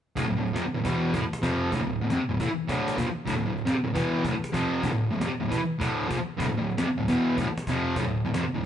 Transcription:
0.16 distorted electric guitar D2 A2, cajon bass
0.27 distorted electric guitar D2 A2
0.37 distorted electric guitar D2 A2
0.47 cajon slap
0.54 distorted electric guitar F2 C3, cajon slap
0.66 muted distorted electric guitar stroke
0.75 distorted electric guitar D2 A2
0.84 distorted electric guitar E2 B2 E3, cajon bass
1.14 distorted electric guitar D2 A2, cajon bass
1.22 muted distorted electric guitar stroke
1.33 cajon slap
1.42 distorted electric guitar F2 C3 F3, cajon bass
1.72 distorted electric guitar D2 A2, cajon bass
1.81 distorted electric guitar D2 A2
2.01 distorted electric guitar D2 A2
2.10 distorted electric guitar F2 C3, cajon slap
2.19 muted distorted electric guitar stroke
2.29 distorted electric guitar D2 A2
2.40 distorted electric guitar A2 E3, cajon bass
2.50 muted distorted electric guitar stroke
2.68 distorted electric guitar D2 A2 D3, cajon bass
2.88 cajon slap
2.97 distorted electric guitar A#2 F3, cajon bass
3.08 muted distorted electric guitar stroke
3.26 distorted electric guitar D2 A2, cajon bass
3.37 distorted electric guitar D2 A2
3.47 distorted electric guitar D2 A2
3.57 cajon slap
3.66 distorted electric guitar F2 C3, cajon slap
3.76 muted distorted electric guitar stroke
3.84 distorted electric guitar D2 A2
3.94 distorted electric guitar E2 B2 E3, cajon bass
4.24 distorted electric guitar D2 A2, cajon bass
4.34 muted distorted electric guitar stroke
4.44 cajon slap
4.52 distorted electric guitar F2 C3 F3, cajon bass
4.83 distorted electric guitar D2 A2, cajon bass
4.92 distorted electric guitar D2 A2
5.11 distorted electric guitar D2 A2, cajon slap
5.20 distorted electric guitar F2 C3, cajon slap
5.30 muted distorted electric guitar stroke
5.40 distorted electric guitar D2 A2
5.50 distorted electric guitar A2 E3, cajon bass
5.59 muted distorted electric guitar stroke
5.79 distorted electric guitar D2 A2 D3, cajon bass
6.08 distorted electric guitar A#2 F3, cajon bass
6.19 muted distorted electric guitar stroke
6.37 distorted electric guitar D2 A2, cajon bass
6.48 distorted electric guitar D2 A2
6.58 distorted electric guitar D2 A2
6.69 cajon slap
6.78 distorted electric guitar F2 C3, cajon slap
6.88 muted distorted electric guitar stroke
6.98 distorted electric guitar D2 A2
7.08 distorted electric guitar E2 B2 E3, cajon bass
7.37 distorted electric guitar D2 A2, cajon bass
7.48 muted distorted electric guitar stroke
7.58 cajon slap
7.67 distorted electric guitar F2 C3 F3, cajon bass
7.96 distorted electric guitar D2 A2, cajon bass
8.06 distorted electric guitar D2 A2
8.25 distorted electric guitar D2 A2, cajon slap
8.34 distorted electric guitar F2 C3, cajon slap
8.44 muted distorted electric guitar stroke
8.54 distorted electric guitar D2 A2

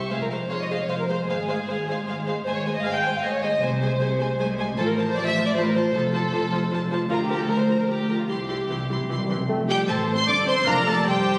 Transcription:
Already playing: violin section G4 E5 C#6
0.10 double bass section F1, cello section F2, viola section G#3 C5, violin section G#4 F5
0.21 violin section A#4
0.30 viola section G#3 C5, violin section F5
0.41 violin section C5
0.49 double bass section F1, cello section F2, viola section G#3 C5, violin section C#5 F5
0.61 violin section D#5
0.70 viola section G#3 C5, violin section F5
0.80 violin section C#5
0.89 double bass section F1, cello section F2, viola section G#3 C5, violin section C5 F5
0.99 violin section A#4
1.08 viola section G#3 C5, violin section C5 F5
1.28 double bass section G#1, cello section G#2, viola section G#3 C5, violin section G#4 F5
1.48 viola section G#3 C5, violin section F5
1.67 double bass section G#1, cello section G#2, viola section G#3 C5, violin section F5
1.88 viola section G#3 C5, violin section F5
2.06 double bass section G#1, cello section G#2, viola section G#3 C5, violin section F5
2.26 viola section G#3 C5, violin section F5
2.45 double bass section G#1, cello section G#2, viola section G#3 C5, violin section C5 G#5
2.55 violin section C#5
2.66 viola section G#3 C5, violin section G#5
2.75 violin section D#5
2.83 double bass section G#1, cello section G#2, viola section G#3 C5, violin section F5 G#5
2.94 violin section G5
3.02 viola section G#3 C5, violin section G#5
3.15 violin section F5
3.21 double bass section G#1, cello section G#2, viola section G#3 C5, violin section D#5 G#5
3.32 violin section C#5
3.42 viola section G#3 C5, violin section D#5 G#5
3.61 double bass section C2, cello section C3, timpani C3, viola section G#3 C5, violin section C5 G#5
3.81 viola section G#3 C5, violin section G#5
4.00 double bass section C2, cello section C3, viola section G#3 C5, violin section G#5
4.20 viola section G#3 C5, violin section G#5
4.39 double bass section C2, cello section C3, viola section G#3 C5, violin section G#5
4.58 viola section G#3 C5, violin section G#5
4.77 double bass section A1, cello section A2, viola section F3 C5, violin section A4 A5
4.87 violin section A#4
4.97 viola section F3 C5, violin section A5
5.07 violin section C5
5.16 double bass section A1, cello section A2, viola section F3 C5, violin section D5 A5
5.26 violin section E5
5.37 viola section F3 C5, violin section A5
5.46 violin section D5
5.54 double bass section A1, cello section A2, viola section F3 C5, violin section C5 A5
5.65 violin section A#4
5.74 viola section F3 C5, violin section C5 A5
5.93 double bass section F1, timpani F2, cello section F2, viola section F3 C5, violin section A4 A5
6.12 viola section F3 C5, violin section A5
6.32 double bass section F1, cello section F2, viola section F3 C5, violin section A5
6.51 viola section F3 C5, violin section A5
6.71 double bass section F1, cello section F2, viola section F3 C5, violin section A5
6.90 viola section F3 C5, violin section A5
7.09 double bass section D2, cello section D2, viola section F3 A#4, violin section F4 A#5
7.21 violin section G4
7.29 viola section F3 A#4, violin section A#5
7.41 violin section A4
7.48 double bass section D2, cello section D2, viola section F3 A#4, violin section A#4 A#5
7.60 violin section C5
7.68 viola section F3 A#4, violin section A#5
7.79 violin section A#4
7.88 cello section D2, double bass section D2, viola section F3 A#4, violin section G4 A#5
8.09 viola section F3 A#4, violin section A#5
8.20 violin section F4
8.28 cello section C2, double bass section C2, timpani C3, viola section E3 G4, violin section G4 C6
8.46 timpani C3, viola section E3 G4, violin section C6
8.53 timpani C3
8.60 timpani C3
8.68 double bass section C2, cello section C2, timpani C3, viola section E3 G4, violin section C6
8.75 timpani C3
8.83 timpani C3
8.89 timpani C3, viola section E3 G4, violin section C6
8.99 timpani C3
9.07 double bass section C2, cello section C2, timpani C3, viola section E3 G4
9.11 timpani C3, violin section C6
9.20 timpani C3
9.28 timpani C3, viola section E3 G4, violin section C6
9.36 timpani C3
9.49 double bass section F1, cello section F2, bassoon A3, clarinet C4
9.67 french horn section G3, flute section G4, violin section G4 G5, oboe G4, trumpet section G4
9.87 double bass section A1, cello section A2, french horn section A3, violin section A4 A5, flute section A4, trumpet section A4, oboe A4, viola section C5
10.13 french horn section C4, violin section C5 C6, oboe C5, trumpet section C5, flute section C5
10.25 double bass section G1, cello section G2, french horn section D4, viola section A4, flute section D5, violin section D5 D6, oboe D5, trumpet section D5
10.45 french horn section C4, violin section C5 C6, oboe C5, trumpet section C5, flute section C5
10.65 double bass section F1, cello section F2, timpani F2, bassoon A#3, french horn section A#3, clarinet D4, violin section A#4 A#5, oboe A#4, trumpet section A#4, flute section A#4, viola section D5
10.85 french horn section A3, violin section A4 A5, flute section A4, oboe A4, trumpet section A4
11.05 double bass section G1, cello section G2, french horn section G3, oboe G4, flute section G4, violin section G4 G5, trumpet section G4, viola section C5

